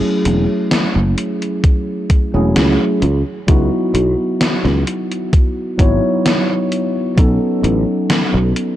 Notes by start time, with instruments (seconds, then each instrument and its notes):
Already playing: tine electric piano F#3 A3 C#4 E4 G#4
0.25 fretless electric bass E1, closed hi-hat
0.71 snare, closed hi-hat
0.95 fretless electric bass F#1
1.18 closed hi-hat
1.42 closed hi-hat
1.64 kick, closed hi-hat
2.10 kick, closed hi-hat
2.34 fretless electric bass E1, tine electric piano F#3 A3 C#4 E4 G#4
2.56 fretless electric bass C#2, snare, closed hi-hat
3.02 fretless electric bass C#2, closed hi-hat
3.47 fretless electric bass C#2, tine electric piano F#3 B3 D#4 E4 F#4, kick, closed hi-hat
3.94 fretless electric bass B1, closed hi-hat
4.41 snare, closed hi-hat
4.64 fretless electric bass C#2, snare
4.87 closed hi-hat
5.12 closed hi-hat
5.33 kick, closed hi-hat
5.78 fretless electric bass G#1, tine electric piano F#3 B3 D#4 E4 C#5, kick, closed hi-hat
6.26 snare, closed hi-hat
6.72 closed hi-hat
7.16 fretless electric bass B1, tine electric piano F#3 B3 C#4 D#4 A4, kick, closed hi-hat
7.63 fretless electric bass A1, closed hi-hat
8.10 snare, closed hi-hat
8.34 fretless electric bass B1
8.56 closed hi-hat